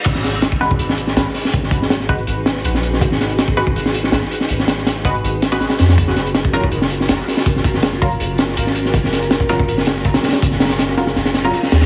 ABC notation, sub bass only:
X:1
M:4/4
L:1/8
Q:1/4=162
K:G#dor
V:1 name="Sub bass" clef=bass
G,,,4 G,,,2 G,,, z | G,,,4 G,,,2 A,,,2 | G,,,4 G,,,2 G,,, z | G,,,4 G,,,2 z E,, |
F,,,4 F,,,2 F,,, z | F,,,4 F,,,2 G,,,2 | F,,,4 F,,,2 F,,, z | F,,,4 F,,,2 z D,, |]